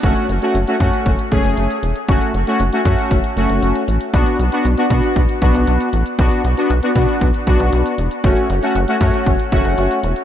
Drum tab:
HH |xxxxxxxxxxxxxxxx|xxxxxxxxxxxxxxxx|xxxxxxxxxxxxxxxx|xxxxxxxxxxxxxxxx|
BD |o-----o-o-o-----|o-----o-o-------|o-----o-o-o-----|o-----o-o-o-----|

HH |xxxxxxxxxxxxxxxx|
BD |o-----o-o-o-----|